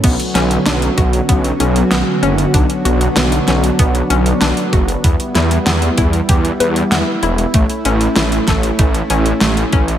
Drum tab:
CC |x---------------|----------------|----------------|----------------|
HH |xxxxxxxxxxxxx-xx|xxxxxxxxxxxxxxxx|xxxxxxxxxxxxx-xx|xxxxxxxxxxxxxxxx|
SD |--o-o-------o---|----o-o-----o---|--o-o-------o---|----o-o-----o---|
BD |o-----o-o-------|o-------o-----o-|o-----o-o-------|o-----o-o-----o-|